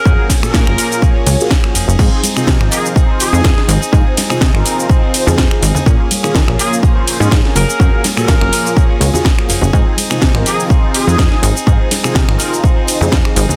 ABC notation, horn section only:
X:1
M:4/4
L:1/16
Q:"Swing 16ths" 1/4=124
K:Abmix
V:1 name="Horn section"
B2 z B6 z6 z | z6 A z3 A4 z2 | z16 | z6 A z6 z B2- |
B2 z B6 z6 z | z6 A z3 A4 z2 | z16 |]